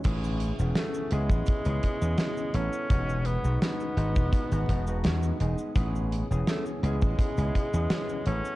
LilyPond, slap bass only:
\new Staff \with { instrumentName = "Slap bass" } { \clef bass \time 4/4 \key a \lydian \tempo 4 = 84 a,,8. e,,16 r8 cis,16 a,,16 r16 cis,16 r16 e,16 r8 a,,16 r16 | e,,8. b,,16 r8 gis,,16 e,,16 r16 gis,,16 e,,8 e,16 r16 e,,16 r16 | a,,8. e,,16 r8 cis,16 a,,16 r16 cis,16 r16 e,16 r8 a,,16 r16 | }